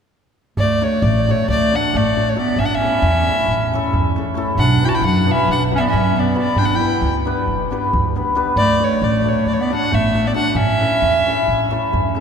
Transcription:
0.57 upright bass D2, clarinet A3, violin D5, darbuka dum
0.70 darbuka tek
0.81 hammered dulcimer A3 D4 F#4 A4, clarinet A3, violin C#5, darbuka tek
0.93 darbuka tek
1.02 upright bass A1, clarinet A3, violin D5, darbuka tek
1.15 darbuka tek
1.27 hammered dulcimer A3 D4 F#4 A4, clarinet A3, violin C#5
1.48 upright bass D2, clarinet A3, violin D5, darbuka tek
1.72 hammered dulcimer A3 D4 F#4 A4, clarinet D4, violin F#5, darbuka tek
1.84 darbuka tek
1.94 upright bass A1, clarinet A3, violin D5, darbuka dum
2.16 hammered dulcimer A3 D4 F#4 A4, darbuka tek
2.29 clarinet A3, violin C#5
2.35 hammered dulcimer A3 D4 F#4 A4, clarinet B3, violin D5, darbuka tek
2.47 darbuka tek
2.56 upright bass A1, clarinet C#4, violin E5, darbuka dum
2.64 clarinet D4, violin F#5
2.70 darbuka tek
2.74 clarinet C#4, violin E5
2.81 hammered dulcimer A3 C#4 E4 A4, darbuka tek
2.92 darbuka tek
3.02 upright bass E2, darbuka tek
3.15 darbuka tek
3.27 hammered dulcimer A3 C#4 E4 A4, darbuka tek
3.47 upright bass A1, darbuka tek
3.72 hammered dulcimer A3 C#4 E4 A4, darbuka tek
3.82 darbuka tek
3.93 upright bass E2, darbuka dum
4.04 darbuka tek
4.16 hammered dulcimer A3 C#4 E4 A4, darbuka tek
4.34 hammered dulcimer A3 C#4 E4 A4, darbuka tek
4.45 darbuka tek
4.55 upright bass B1, violin F#5, darbuka dum
4.59 clarinet D4
4.68 darbuka tek
4.80 hammered dulcimer B3 D4 F#4 B4, darbuka tek
4.85 clarinet E4 F#4, violin G5 A5
4.91 clarinet E4, darbuka tek
4.95 violin G5
5.01 upright bass F#2, darbuka tek
5.05 clarinet D4, violin F#5
5.14 darbuka tek
5.26 hammered dulcimer B3 D4 F#4 B4, darbuka tek
5.31 clarinet C#4, violin E5
5.47 upright bass B1, darbuka tek
5.51 clarinet D4, violin F#5
5.70 hammered dulcimer B3 D4 F#4 B4, darbuka tek
5.75 clarinet C#4, violin E5
5.80 clarinet B3, violin D5, darbuka tek
5.88 clarinet C#4, violin E5
5.93 upright bass F#2, darbuka dum
6.05 darbuka tek
6.14 hammered dulcimer B3 D4 F#4 B4, darbuka tek
6.18 clarinet B3, violin D5
6.34 hammered dulcimer B3 D4 F#4 B4, darbuka tek
6.38 clarinet B3, violin D5
6.47 darbuka tek
6.56 upright bass G1, clarinet D4, violin G5, darbuka dum
6.64 clarinet D4, violin F#5
6.75 clarinet E4, violin G5
6.80 hammered dulcimer B3 D4 G4 B4, darbuka tek
6.92 darbuka tek
7.02 upright bass D2, darbuka tek
7.16 darbuka tek
7.25 hammered dulcimer B3 D4 G4 B4, darbuka tek
7.37 darbuka tek
7.48 upright bass G1, darbuka tek, darbuka dum
7.71 hammered dulcimer B3 D4 G4 B4, darbuka tek
7.83 darbuka tek
7.93 upright bass D2, darbuka dum
8.05 darbuka tek
8.16 hammered dulcimer B3 D4 G4 B4, darbuka tek
8.27 darbuka tek
8.35 hammered dulcimer B3 D4 G4 B4, darbuka tek
8.47 darbuka tek
8.56 upright bass D2, clarinet A3, violin D5, darbuka dum
8.69 darbuka tek
8.78 hammered dulcimer A3 D4 F#4 A4, darbuka tek
8.83 clarinet A3, violin C#5
8.93 darbuka tek
9.02 upright bass A1, clarinet A3, violin D5, darbuka tek
9.15 darbuka tek
9.24 hammered dulcimer A3 D4 F#4 A4, clarinet A3, darbuka tek
9.29 violin C#5
9.46 upright bass D2, clarinet A3, violin D5, darbuka tek
9.53 clarinet A3, violin C#5
9.60 clarinet B3, violin D5
9.70 hammered dulcimer A3 D4 F#4 A4, clarinet D4, darbuka tek
9.75 violin F#5
9.83 darbuka tek
9.92 upright bass A1, clarinet A3, violin E5, darbuka dum
10.04 darbuka tek
10.14 hammered dulcimer A3 D4 F#4 A4, darbuka tek
10.26 clarinet B3, violin D5
10.34 hammered dulcimer A3 D4 F#4 A4, clarinet D4, violin F#5, darbuka tek
10.48 clarinet D4, violin F#5
10.54 upright bass A1, clarinet C#4, violin E5, darbuka dum
10.68 darbuka tek
10.79 hammered dulcimer A3 C#4 E4 A4, darbuka tek
10.91 darbuka tek
11.02 upright bass E2, darbuka tek
11.26 hammered dulcimer A3 C#4 E4 A4, darbuka tek
11.46 upright bass A1, darbuka tek
11.70 hammered dulcimer A3 C#4 E4 A4, darbuka tek
11.82 darbuka tek
11.93 upright bass E2, darbuka dum
12.03 darbuka tek
12.15 hammered dulcimer A3 C#4 E4 A4, darbuka tek

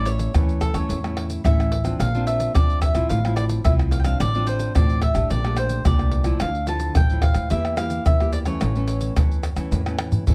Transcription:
Already playing: upright bass A1, nylon-string guitar A2 A3 C#4 E4
0.05 cavaquinho C#5, pandeiro, shaker
0.19 pandeiro, shaker
0.34 upright bass E2, nylon-string guitar E3 A3 C#4 E4, pandeiro, tamborim, shaker, surdo
0.49 pandeiro, shaker
0.61 cavaquinho A4, pandeiro, tamborim, shaker, surdo
0.74 upright bass E2, nylon-string guitar A3 C#4 E4, cavaquinho C#5, pandeiro, tamborim, shaker
0.89 upright bass E2, nylon-string guitar A2, pandeiro, shaker, surdo
1.04 nylon-string guitar A3 C#4 E4, pandeiro, tamborim, shaker
1.17 pandeiro, tamborim
1.30 pandeiro, shaker
1.44 upright bass A1, nylon-string guitar E3 A3 C#4 E4, cavaquinho E5, pandeiro, tamborim, shaker, surdo
1.60 pandeiro, tamborim, shaker
1.72 pandeiro
1.84 nylon-string guitar F3 C4 D4, pandeiro, tamborim, shaker
1.99 upright bass A#1, nylon-string guitar A#2, cavaquinho F5, pandeiro, tamborim, shaker, surdo
2.14 nylon-string guitar F3 C4 D4, pandeiro, shaker
2.27 cavaquinho E5, pandeiro, shaker
2.40 pandeiro, shaker
2.54 upright bass F2, nylon-string guitar F3 C4 D4, cavaquinho D5, pandeiro, tamborim, shaker, surdo
2.70 pandeiro, shaker
2.81 cavaquinho E5, pandeiro, tamborim, shaker, surdo
2.94 upright bass A#1, nylon-string guitar F3 C4 E4, pandeiro, tamborim, shaker
3.09 upright bass A1, nylon-string guitar A2, cavaquinho F5, pandeiro, shaker, surdo
3.24 nylon-string guitar F3 C4 E4, pandeiro, tamborim, shaker
3.36 cavaquinho D5, pandeiro, tamborim, shaker
3.49 pandeiro, shaker
3.64 upright bass C2, nylon-string guitar A2 F3 C4 E4, cavaquinho E5, pandeiro, tamborim, shaker, surdo
3.79 pandeiro, tamborim, shaker
3.91 cavaquinho F5, pandeiro, shaker
4.00 cavaquinho G5
4.04 nylon-string guitar F3 C4 D4, cavaquinho F5, pandeiro, tamborim, shaker
4.20 upright bass A1, nylon-string guitar A2, cavaquinho D5, pandeiro, tamborim, shaker, surdo
4.35 nylon-string guitar F3 C4 D4, pandeiro, shaker
4.47 cavaquinho C5, pandeiro, shaker
4.59 pandeiro, shaker
4.75 upright bass A1, nylon-string guitar A2 F3 C4 D4, cavaquinho D5, pandeiro, tamborim, shaker, surdo
4.90 pandeiro, shaker
5.02 cavaquinho E5, pandeiro, tamborim, surdo
5.14 upright bass A1, nylon-string guitar A3 D4 G4, pandeiro, tamborim, shaker
5.30 upright bass A#1, nylon-string guitar A#2, cavaquinho D5, pandeiro, shaker, surdo
5.44 nylon-string guitar A3 D4 G4, pandeiro, tamborim, shaker
5.57 cavaquinho C5, pandeiro, tamborim, shaker
5.69 pandeiro, shaker
5.85 upright bass C2, nylon-string guitar A#2 A3 D4 G4, cavaquinho D5, pandeiro, tamborim, shaker, surdo
5.99 pandeiro, tamborim, shaker
6.12 pandeiro
6.24 nylon-string guitar F3 A3 E4, pandeiro, tamborim, shaker
6.40 upright bass D2, nylon-string guitar D3, cavaquinho F5, pandeiro, tamborim, shaker, surdo
6.55 pandeiro, shaker
6.67 nylon-string guitar F3 A3 E4, cavaquinho A5, pandeiro, shaker
6.80 pandeiro, shaker
6.95 upright bass A1, nylon-string guitar A2, cavaquinho G5, pandeiro, tamborim, shaker, surdo
7.10 nylon-string guitar F3 A3 E4, pandeiro, shaker
7.22 cavaquinho F5, pandeiro, tamborim, surdo
7.34 upright bass D2, pandeiro, tamborim, shaker
7.50 upright bass E2, nylon-string guitar E3 A#3 E4 G4, cavaquinho E5, pandeiro, shaker, surdo
7.65 pandeiro, tamborim, shaker
7.77 nylon-string guitar A#3 E4 G4, cavaquinho F5, pandeiro, tamborim, shaker
7.90 pandeiro, shaker
8.06 upright bass E2, nylon-string guitar E3, cavaquinho E5, pandeiro, tamborim, shaker, surdo
8.20 nylon-string guitar A#3 E4 G4, pandeiro, tamborim, shaker
8.33 cavaquinho D5, pandeiro, shaker
8.45 nylon-string guitar E3 A3 C#4, cavaquinho C#5, pandeiro, tamborim, shaker
8.61 upright bass A1, nylon-string guitar A2, pandeiro, tamborim, shaker, surdo
8.75 nylon-string guitar E3 A3 C#4, pandeiro, shaker
8.88 pandeiro, shaker
9.01 pandeiro, shaker
9.16 upright bass E2, nylon-string guitar E3 A3 C#4, pandeiro, tamborim, shaker, surdo
9.32 pandeiro, shaker
9.43 pandeiro, tamborim, shaker
9.56 upright bass E2, nylon-string guitar E3 A3 C#4, pandeiro, tamborim, shaker
9.71 upright bass E2, nylon-string guitar A2, pandeiro, shaker, surdo
9.86 nylon-string guitar E3 A3 C#4, pandeiro, tamborim, shaker
9.99 pandeiro, tamborim, shaker
10.12 surdo, pandeiro, shaker
10.27 upright bass C#2, nylon-string guitar E3 A3 C#4, surdo, pandeiro, shaker

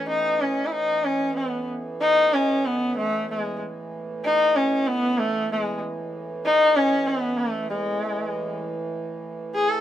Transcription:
Already playing: harmonium A2 E3
0.09 sarangi D#4
0.41 sarangi C#4
0.66 sarangi E4
0.72 sarangi D#4
1.05 sarangi C#4
1.37 sarangi B3
2.02 sarangi D#4
2.33 sarangi C#4
2.66 sarangi B3
2.98 sarangi A3
3.31 sarangi G#3
4.25 sarangi D#4
4.56 sarangi C#4
4.87 sarangi B3
5.20 sarangi A3
5.53 sarangi G#3
6.45 sarangi D#4
6.76 sarangi C#4
7.08 sarangi B3
7.39 sarangi A3
7.70 harmonium A2 E3, sarangi G#3
9.55 sarangi G#4
9.70 sarangi A4

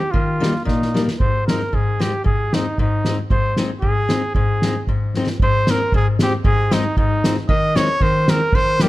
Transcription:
Already playing: trumpet G4
0.11 steel-string acoustic guitar D#3, trumpet F4, kick
0.40 steel-string acoustic guitar G3 A#3 D#4, snare
0.56 snare
0.65 steel-string acoustic guitar A#2, trumpet D#4, kick, snare
0.82 snare
0.94 steel-string acoustic guitar G3 A#3 D#4, snare
1.08 snare
1.20 steel-string acoustic guitar G#2, trumpet C5, kick
1.47 steel-string acoustic guitar G#3 C4 D#4, trumpet A#4, snare
1.60 snare
1.73 steel-string acoustic guitar G#2, trumpet G#4, kick
2.00 steel-string acoustic guitar G#3 C4 D#4, trumpet G4, snare
2.24 steel-string acoustic guitar G#2, trumpet G#4, kick
2.53 steel-string acoustic guitar G#3 C4 D#4, trumpet D#4, snare
2.78 steel-string acoustic guitar G#2, trumpet D#4, kick
3.05 steel-string acoustic guitar G#3 C4 D#4, snare
3.30 steel-string acoustic guitar G#2, trumpet C5, kick
3.56 steel-string acoustic guitar G#3 C4 D#4, snare
3.81 steel-string acoustic guitar G#2, trumpet G#4, kick
4.09 steel-string acoustic guitar G#3 C4 D#4, snare
4.35 steel-string acoustic guitar G#2, trumpet G#4, kick
4.62 steel-string acoustic guitar G#3 C4 D#4, snare
4.87 steel-string acoustic guitar G#2, kick
5.14 steel-string acoustic guitar G#3 C4 D#4, snare
5.27 snare
5.40 steel-string acoustic guitar G#2, trumpet C5, kick
5.67 steel-string acoustic guitar G#3 C4 D#4, trumpet A#4, snare, hi-hat pedal
5.92 steel-string acoustic guitar G#2, trumpet G#4, kick
6.19 steel-string acoustic guitar G#3 C4 D#4, trumpet G4, snare, hi-hat pedal
6.45 steel-string acoustic guitar G#2, trumpet G#4, kick
6.71 steel-string acoustic guitar G#3 C4 D#4, trumpet D#4, snare, hi-hat pedal
6.97 steel-string acoustic guitar G#2, trumpet D#4, kick
7.24 steel-string acoustic guitar G#3 C4 D#4, snare, hi-hat pedal
7.37 snare
7.49 steel-string acoustic guitar D#3, trumpet D#5, kick
7.75 steel-string acoustic guitar G#3 C4 D#4, trumpet C#5, snare, hi-hat pedal
8.01 steel-string acoustic guitar D#3, trumpet C5, kick
8.28 steel-string acoustic guitar G#3 C4 D#4, trumpet A#4, snare, hi-hat pedal
8.53 steel-string acoustic guitar D#3, trumpet C5, kick
8.79 steel-string acoustic guitar G3 A#3 D#4, trumpet G4, snare, hi-hat pedal

